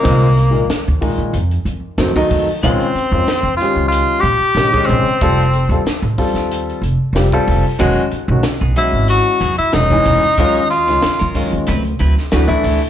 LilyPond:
<<
  \new Staff \with { instrumentName = "Tenor saxophone" } { \time 4/4 \key f \minor \tempo 4 = 93 bes4 r2. | c'4. f'8 f'8 g'4 c'8~ | c'4 r2. | r4. e'8 fis'8. e'16 dis'4~ |
dis'8 f'4 r2 r8 | }
  \new Staff \with { instrumentName = "Clean electric guitar" } { \time 4/4 \key f \minor r1 | r1 | r1 | <fis b dis' gis'>16 r4 <b dis' gis'>16 <fis b dis' gis'>16 r8. <fis b dis' gis'>16 r16 <fis b dis' gis'>16 r8. |
<ges des' f' bes'>16 r4 <des' f' bes'>16 <ges des' f' bes'>16 r16 <fis c' e' b'>16 r16 <fis c' e' b'>16 r16 <fis c' e' b'>16 r8. | }
  \new Staff \with { instrumentName = "Grand piano" } { \time 4/4 \key f \minor <bes, ees aes c'>16 r16 <aes bes>16 <bes, ees aes bes>16 <aes c'>16 r16 <bes, ees aes ees'>8 r4 <ees ges a c'>16 <ees ges a ees'>8 r16 | <ees aes des' f'>16 r16 <des' f'>16 <ees aes des' f'>16 <des' ees'>16 r16 <ees aes des' g'>4 r8 <ees aes des' g'>16 <ees aes des' aes'>8 r16 | <g c' f' a'>16 r16 <f' a'>16 <g c' f' a'>16 <f' c''>16 r16 <g c' f' a'>4 r8 <g c' f' g'>16 <g c' f' a'>8 r16 | <dis gis des' fis'>16 r16 dis'16 <dis gis des' fis'>16 <des' e'>16 r16 <e gis des' fis'>4 r8 <dis gis des' dis'>16 <e gis des' dis'>8 r16 |
<ees aes des' f'>16 r16 <des' ges'>16 <ees aes des' f'>16 <des' ees'>16 r16 <ees aes des' f'>8 r4 <e a d' fis'>16 <e a d' e'>8 r16 | }
  \new Staff \with { instrumentName = "Upright bass" } { \clef bass \time 4/4 \key f \minor c,8. bes,,16 r16 ees,16 r16 bes,,16 f,8 f,16 r16 f,16 r16 f,16 r16 | bes,,16 r8 f,16 r16 f,16 r16 des,8 r16 bes,16 r16 bes,,8 bes,,16 r16 | f,,8. ees,16 r16 a,,16 r16 ees,8. f,,16 r16 f,,16 r16 f,,16 r16 | e,,16 r8 b,,16 r16 b,,16 r16 gis,,8 r16 e,16 r16 e,,8 e,,16 r16 |
ees,8. des,16 r16 ges,16 r16 ees,16 d,8 d,16 r16 d,16 r16 d,16 r16 | }
  \new DrumStaff \with { instrumentName = "Drums" } \drummode { \time 4/4 <hh bd>16 hh16 hh16 hh16 <hh sn>16 hh16 <hho bd>16 hh16 hh16 hh16 hh8 <hh sn>16 bd16 <hho bd>8 | <hh bd>16 hh16 hh8 <hh sn>8 hh8 hh8 hh16 hh16 <hh sn>16 bd16 <hh bd>16 hh16 | <hh bd>16 hh16 hh16 hh16 <hh sn>16 hh16 <hho bd>16 <hh sn>16 hh16 hh16 hh8 <hh sn>16 bd16 <hho bd>8 | <hh bd>16 hh16 hh8 <hh sn>8 hh8 hh8 hh16 hh16 <hh sn>16 bd16 <hh bd>16 hh16 |
<hh bd>16 hh16 hh16 <hh sn>16 <hh sn>16 hh16 <hho bd>16 hh16 hh16 hh16 hh16 sn16 <hh sn>16 bd16 <hho bd>8 | }
>>